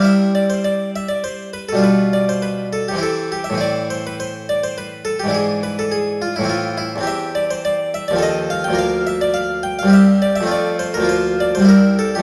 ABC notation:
X:1
M:3/4
L:1/16
Q:1/4=104
K:C
V:1 name="Harpsichord"
e2 d c d2 e d c2 B A | B2 d c B2 A G A2 G e | d2 c B c2 d c B2 A G | ^G2 B A G2 F E F2 E z |
[K:Cmix] e2 d c d2 e d _e2 f g | f2 e d f2 g f e2 d e | d2 c B c2 d c B2 A G |]
V:2 name="Harpsichord"
[C,G,CE]12 | [B,,G,DF]8 [C,E,CE]4 | [A,,E,CE]12 | [^G,,E,DE]8 [A,,E,CE]4 |
[K:Cmix] [E,,E,CG]8 [_E,,F,CA]4 | [D,,F,B,B]8 [C,,G,CG]4 | [F,,A,CF]4 [D,,F,B,F]4 [C,,G,CE]4 |]